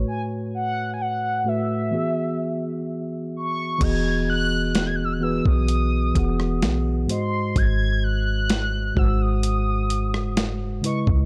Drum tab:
CC |----------------|x---------------|----------------|
HH |----------------|x---x---x-x-x-x-|x---x---x-x-x-x-|
SD |----------------|----o------ro---|----o------ro---|
BD |----------------|o------o--o-----|o-----o--------o|